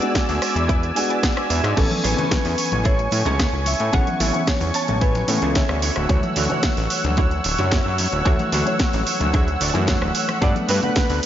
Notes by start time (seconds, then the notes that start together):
Already playing: D5 G#5 E6
0.01 G#3 B3 D4 F#4, closed hi-hat
0.15 kick, snare, closed hi-hat
0.28 D2, muted clean electric guitar stroke, open hi-hat
0.42 cross-stick, open hi-hat
0.56 E2, closed hi-hat
0.69 E4 G#4 B4 D5, kick, closed hi-hat
0.83 closed hi-hat
0.95 G#3 B3 D4 F#4 G#5, muted clean electric guitar stroke, open hi-hat
1.09 E4 G#4 B4 D5, closed hi-hat
1.23 F#5, kick, snare, closed hi-hat
1.37 cross-stick, closed hi-hat
1.50 E2 E5, open hi-hat
1.64 G#2, cross-stick, closed hi-hat
1.77 A1 E3 B3 C#4 E4 G#4 A4 C#5 C#6, kick, closed hi-hat, crash, muted conga, shaker
1.90 closed hi-hat, high conga, shaker
2.04 A1 E4 G#4 A4 B4 C#5, open hi-hat, shaker
2.17 E3 B3 C#4, closed hi-hat, low conga, shaker
2.31 kick, snare, closed hi-hat, muted conga, shaker
2.45 E2, muted clean electric guitar stroke, open hi-hat, shaker
2.58 open hi-hat, shaker
2.72 A1, closed hi-hat, muted conga, high conga, low conga, shaker
2.85 E4 G#4 A4 C#5, kick, closed hi-hat, shaker
2.98 closed hi-hat, shaker
3.11 A2, muted clean electric guitar stroke, open hi-hat, high conga, shaker
3.25 C#2 E4 G#4 A4 C#5, closed hi-hat, muted conga, low conga, shaker
3.39 kick, cross-stick, snare, closed hi-hat, shaker
3.53 C#2, shaker
3.66 E5, open hi-hat, muted conga, shaker
3.79 A2, closed hi-hat, shaker
3.92 A1 E3 B3 C#4 E4 G#4 A4 C#5 F#5, kick, closed hi-hat, shaker
4.07 closed hi-hat, high conga, shaker
4.20 A1 E4 G#4 A4 C#5 E5, snare, open hi-hat, muted conga, shaker
4.33 E3 B3 C#4, closed hi-hat, shaker
4.47 C#5, kick, snare, closed hi-hat, shaker
4.60 E2, muted clean electric guitar stroke, open hi-hat, muted conga, shaker
4.74 C#5 A5, open hi-hat, shaker
4.88 A1, closed hi-hat, high conga, low conga, shaker
5.01 E4 G#4 A4 B4 C#5 G#5, kick, closed hi-hat, shaker
5.15 closed hi-hat, muted conga, shaker
5.28 A2 E3 B3 C#4 A4 F#5, muted clean electric guitar stroke, open hi-hat, shaker
5.42 C#2 E4 G#4 A4 C#5, closed hi-hat, shaker
5.55 C#5 E5, kick, snare, closed hi-hat, muted conga, shaker
5.69 D2, cross-stick, shaker
5.82 D4 E4 F#4 C#5 F#5 E6, open hi-hat, shaker
5.96 D1, cross-stick, closed hi-hat, shaker
6.09 D2 E3 F#3 A3 C#5, kick, closed hi-hat, muted conga, shaker
6.23 closed hi-hat, high conga, shaker
6.36 D2 D4 E4 F#4 C#5, open hi-hat, shaker
6.49 E3 F#3 A3 C#5, closed hi-hat, muted conga, low conga, shaker
6.63 kick, snare, closed hi-hat, shaker
6.77 A1, muted clean electric guitar stroke, open hi-hat, shaker
6.90 open hi-hat, shaker
7.04 D2, closed hi-hat, muted conga, high conga, low conga, shaker
7.17 D4 E4 F#4 C#5, kick, closed hi-hat, shaker
7.31 closed hi-hat, shaker
7.44 D1, muted clean electric guitar stroke, open hi-hat, muted conga, high conga, shaker
7.58 F#2 D4 E4 F#4 C#5, closed hi-hat, low conga, shaker
7.71 kick, cross-stick, snare, closed hi-hat, shaker
7.86 F#2, shaker
7.98 open hi-hat, muted conga, shaker
8.12 D1, closed hi-hat, shaker
8.25 D2 E3 F#3 A3 D4 E4 F#4 C#5, kick, closed hi-hat, shaker
8.39 closed hi-hat, muted conga, high conga, shaker
8.52 D2 D4 E4 F#4 A4, snare, open hi-hat, shaker
8.66 E3 F#3 A3 C#5, closed hi-hat, shaker
8.79 kick, snare, closed hi-hat, shaker
8.93 A1, muted clean electric guitar stroke, open hi-hat, muted conga, shaker
9.06 open hi-hat, shaker
9.20 D2, closed hi-hat, high conga, low conga, shaker
9.34 D4 E4 F#4 G#4, kick, closed hi-hat, muted conga, shaker
9.48 closed hi-hat, shaker
9.61 D1 D5, muted clean electric guitar stroke, open hi-hat, shaker
9.74 F#2 E3 F#3 A3 D4 E4 F#4 C#5, closed hi-hat, shaker
9.87 F#5, kick, snare, closed hi-hat, muted conga, shaker
10.01 D1, cross-stick, shaker
10.15 F#5, open hi-hat, shaker
10.29 cross-stick, closed hi-hat, muted conga, shaker
10.41 G2 A3 B3 D4 F#4 G4 B4 D5 F#5 F#6, kick, closed hi-hat, muted conga, shaker
10.56 closed hi-hat, high conga, shaker
10.68 G2 D4 F#4 G4 B4, open hi-hat, shaker
10.81 A3 B3 D4 F#5, closed hi-hat, low conga, shaker
10.96 kick, snare, closed hi-hat, muted conga, shaker
11.09 D2, muted clean electric guitar stroke, open hi-hat, shaker